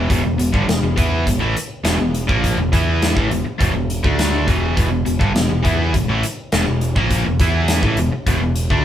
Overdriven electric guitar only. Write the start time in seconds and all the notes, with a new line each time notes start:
0.09 E2 B2
0.23 E2 B2
0.38 E2 B2
0.52 G2 D3
0.68 E2 B2
0.83 E2 B2
0.96 E3 B3 E4
1.25 E2 B2
1.39 A2 E3
1.55 muted overdriven electric guitar stroke
1.84 E2 B2
1.99 E2 B2
2.27 A#2 F3 A#3
2.58 E2 B2
2.72 E3 B3 E4
3.15 A2 E3
3.30 E2 B2
3.45 muted overdriven electric guitar stroke
3.58 E2 B2
3.75 E2 B2
4.03 D3 A3 D4
4.47 E2 B2 E3
4.76 E2 B2
4.90 E2 B2
5.05 E2 B2
5.19 G2 D3
5.34 E2 B2
5.49 E2 B2
5.63 E3 B3 E4
5.93 E2 B2
6.08 A2 E3
6.24 muted overdriven electric guitar stroke
6.53 E2 B2
6.67 E2 B2
6.96 A#2 F3 A#3
7.25 E2 B2
7.41 E3 B3 E4
7.83 A2 E3
7.98 E2 B2
8.12 muted overdriven electric guitar stroke
8.27 E2 B2
8.43 E2 B2
8.71 D3 A3 D4